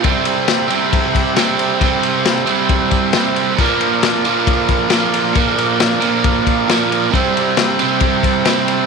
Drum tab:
CC |--------|--------|x-------|--------|
RD |xxxxxxxx|xxxxxxxx|-xxxxxxx|xxxxxxxx|
SD |--o---o-|--o---o-|--o---o-|--o---o-|
BD |o---oo--|o---oo--|o---oo--|o---oo--|

CC |--------|
RD |xxxxxxxx|
SD |--o---o-|
BD |o---oo--|